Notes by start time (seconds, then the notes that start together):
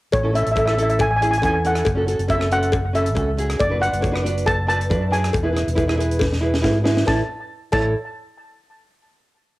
0.12 A1 C#5, kick, closed hi-hat, cowbell
0.23 C#4 E4 A4
0.32 C#4 E4 A4 E5, closed hi-hat
0.43 A1 E5, closed hi-hat
0.52 C#4 E4 E5
0.56 A4 E5, kick, closed hi-hat, cowbell
0.66 C#4 E4 A4 E5, cross-stick
0.73 C#4 E5
0.77 E4 A4, closed hi-hat
0.83 E5
0.89 E5, closed hi-hat
0.99 G#5, kick, closed hi-hat, cowbell
1.11 G#5
1.16 G#5
1.21 C#4 E4 G#4 G#5, closed hi-hat
1.31 G#5, closed hi-hat
1.38 C#4 G#5, cowbell
1.43 E2 E4 A4 G#5, kick, closed hi-hat
1.53 G#5
1.65 C#4 E4 A4 F#5, closed hi-hat
1.75 cross-stick, closed hi-hat
1.85 F#1, kick, closed hi-hat, cowbell
1.95 C#4 F#4 A4
2.06 C#4 F#4 A4, closed hi-hat
2.18 F#1, closed hi-hat
2.28 C#4 F#4 A4 E5, kick, closed hi-hat, cowbell
2.39 C#4 F#4 A4, cross-stick
2.51 C#4 F#4 A4 F#5, closed hi-hat
2.63 closed hi-hat
2.72 kick, closed hi-hat, cowbell
2.93 C#4 F#4 A4 E5, closed hi-hat
3.06 closed hi-hat
3.15 C#2 C#4 F#4 A4, kick, closed hi-hat, cowbell
3.37 C#4 F#4 G#4, closed hi-hat
3.50 cross-stick, closed hi-hat
3.59 F#1 D5, kick, closed hi-hat, cowbell
3.69 D4 F#4 B4
3.80 D4 F#4 B4 F#5, closed hi-hat
3.92 F#1, closed hi-hat
4.01 D4 F#4 C#5, kick, closed hi-hat, cowbell
4.11 D4 F#4 B4
4.16 cross-stick
4.23 D4 F#4 B4, closed hi-hat
4.37 closed hi-hat
4.46 A5, kick, closed hi-hat, cowbell
4.67 D4 F#4 B4 A5, closed hi-hat
4.81 closed hi-hat
4.89 F#2 D4 F#4 B4, kick, closed hi-hat, cowbell
5.11 D4 F#4 G#4 G#5, closed hi-hat
5.24 cross-stick, closed hi-hat
5.33 E1, kick, closed hi-hat, cowbell
5.43 E4 G#4 B4
5.53 E4 G#4 B4, cross-stick, closed hi-hat
5.67 E1, closed hi-hat
5.75 E4 G#4 B4, kick, closed hi-hat, cowbell
5.88 E4 G#4 B4, cross-stick
5.97 E4 G#4 B4, closed hi-hat
6.11 closed hi-hat
6.19 kick, snare, cowbell
6.33 snare
6.41 E4 G#4 B4
6.54 snare
6.62 G#1 E4 G#4 B4, kick, snare, cowbell
6.84 E4 G#4 B4, snare
6.97 snare
7.07 A1 E4 A4 C#5 A5, kick, snare, cowbell
7.72 A1 E4 A4 C#5 A5, kick, crash, cowbell